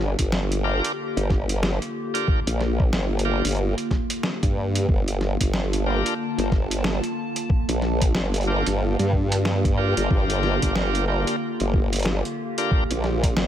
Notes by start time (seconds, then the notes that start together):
Already playing: G1 D3 A#3 F4 G4
0.19 G1, kick, closed hi-hat
0.32 snare
0.52 closed hi-hat
0.64 D4 F4 G4 A#4
0.85 closed hi-hat
1.17 G1, closed hi-hat
1.30 kick, snare
1.49 closed hi-hat
1.63 snare
1.82 closed hi-hat
2.14 D4 F4 G4 A#4, closed hi-hat
2.28 kick
2.47 A#1, closed hi-hat
2.61 snare
2.80 kick
2.93 G1, snare
3.19 closed hi-hat
3.25 D4 F4 G4 A#4
3.45 G1, closed hi-hat
3.47 closed hi-hat
3.49 closed hi-hat
3.51 closed hi-hat
3.55 closed hi-hat
3.57 closed hi-hat
3.78 closed hi-hat
3.91 kick, snare
4.10 closed hi-hat
4.23 snare
4.43 G2, kick, closed hi-hat
4.75 closed hi-hat
4.89 G1 A5, kick
5.08 closed hi-hat
5.21 snare
5.41 G1, kick, closed hi-hat
5.54 snare
5.73 closed hi-hat
5.86 D4 F4 G4 A#4
6.06 closed hi-hat
6.38 G1, closed hi-hat
6.52 kick, snare
6.71 closed hi-hat
6.84 snare
7.04 closed hi-hat
7.36 closed hi-hat
7.50 kick
7.69 A#1, closed hi-hat
7.82 snare
8.02 kick, closed hi-hat
8.15 G1, snare
8.34 closed hi-hat
8.36 closed hi-hat
8.41 closed hi-hat
8.43 closed hi-hat
8.45 D4 F4 G4 A#4, closed hi-hat
8.66 G1, closed hi-hat
8.99 G2, closed hi-hat
9.13 kick
9.32 closed hi-hat
9.45 snare
9.65 kick, closed hi-hat
9.77 D4 F4 G4 A#4
9.97 G1, closed hi-hat
10.10 G1 G4, kick
10.30 closed hi-hat
10.43 snare
10.62 G1, kick, closed hi-hat
10.76 snare
10.95 closed hi-hat
11.08 D4 F4 G4 A#4
11.27 closed hi-hat
11.60 G1, closed hi-hat
11.73 kick
11.93 closed hi-hat
11.96 closed hi-hat
11.99 closed hi-hat
12.03 snare, closed hi-hat
12.25 closed hi-hat
12.58 D4 F4 G4 A#4, closed hi-hat
12.71 kick
12.91 A#1, closed hi-hat
13.04 snare
13.23 kick, closed hi-hat
13.37 G1, snare